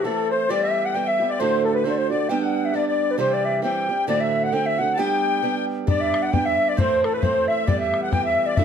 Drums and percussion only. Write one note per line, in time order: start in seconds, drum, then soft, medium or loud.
5.88 bodhran loud
6.14 bodhran medium
6.34 bodhran medium
6.78 bodhran medium
7.04 bodhran medium
7.23 bodhran medium
7.68 bodhran medium
7.94 bodhran medium
8.13 bodhran medium
8.57 bodhran medium